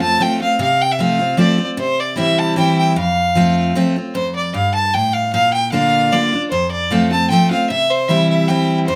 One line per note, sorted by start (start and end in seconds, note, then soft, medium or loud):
0.00 0.16 F2 medium
0.00 0.19 C4 soft
0.00 0.19 F4 medium
0.00 0.23 A5 medium
0.19 0.39 F3 medium
0.19 0.40 A3 medium
0.19 0.40 C4 medium
0.19 0.39 F4 medium
0.19 0.41 G5 medium
0.40 0.59 C4 soft
0.40 0.58 F4 medium
0.40 0.59 F5 medium
0.59 1.34 C3 loud
0.59 0.83 F5 loud
0.81 0.93 G5 medium
0.92 1.02 E5 medium
0.99 1.19 F3 medium
0.99 1.19 A3 medium
0.99 1.19 C4 loud
0.99 1.18 F4 medium
0.99 1.39 F5 medium
1.19 1.37 C4 medium
1.19 1.38 F4 medium
1.37 1.58 F3 medium
1.37 1.58 A3 medium
1.37 1.58 C4 medium
1.37 1.57 F4 medium
1.37 1.67 D5 medium
1.58 1.77 C4 medium
1.58 1.77 F4 medium
1.77 2.53 C3 loud
1.77 2.01 C5 loud
2.00 2.18 D5 medium
2.16 2.54 E3 medium
2.16 2.55 G3 medium
2.16 2.55 C4 loud
2.16 2.55 E4 loud
2.16 2.40 E5 medium
2.38 2.57 A5 medium
2.56 2.94 E3 medium
2.56 2.94 G3 medium
2.56 2.95 C4 medium
2.56 2.95 E4 loud
2.56 2.77 G5 medium
2.78 2.95 G5 medium
2.96 3.71 F2 loud
2.96 3.72 F5 medium
3.35 3.73 F3 medium
3.35 3.74 A3 medium
3.35 3.74 C4 medium
3.35 3.74 F4 loud
3.75 3.95 F3 medium
3.75 3.95 A3 medium
3.75 3.96 C4 loud
3.75 3.95 F4 medium
3.96 4.15 C4 soft
3.96 4.14 F4 medium
4.15 4.54 F2 loud
4.15 4.34 C5 loud
4.36 4.53 D5 medium
4.54 4.92 G2 medium
4.54 4.74 F5 loud
4.75 4.95 A5 medium
4.94 5.32 A2 medium
4.94 5.15 G5 loud
5.13 5.33 F5 medium
5.33 6.09 A#2 loud
5.33 5.52 F5 loud
5.54 5.71 G5 medium
5.72 6.10 D3 medium
5.72 6.10 A#3 medium
5.72 6.11 D4 loud
5.72 6.11 F4 loud
5.72 6.13 F5 loud
6.12 6.32 D3 medium
6.12 6.32 A#3 medium
6.12 6.32 D4 medium
6.12 6.31 F4 loud
6.12 6.42 D5 medium
6.33 6.52 D4 medium
6.33 6.51 F4 medium
6.51 7.27 F2 loud
6.51 6.70 C5 medium
6.71 6.93 D5 medium
6.91 7.10 F3 medium
6.91 7.11 A3 loud
6.91 7.11 C4 loud
6.91 7.10 F4 medium
6.91 7.12 F5 loud
7.11 7.30 C4 soft
7.11 7.29 F4 medium
7.11 7.29 A5 medium
7.30 7.50 F3 medium
7.30 7.51 A3 loud
7.30 7.51 C4 loud
7.30 7.50 F4 loud
7.30 7.49 G5 medium
7.51 7.70 C4 medium
7.51 7.69 F4 medium
7.51 7.69 F5 medium
7.70 8.45 C3 loud
7.70 7.92 E5 loud
7.90 8.10 C5 medium
8.08 8.47 E3 medium
8.08 8.47 G3 medium
8.08 8.47 C4 medium
8.08 8.48 E4 loud
8.08 8.29 E5 medium
8.29 8.49 E5 medium
8.48 8.86 E3 medium
8.48 8.86 G3 medium
8.48 8.87 C4 medium
8.48 8.87 E4 medium
8.48 8.78 G5 medium
8.87 8.96 F2 loud
8.87 8.96 C5 loud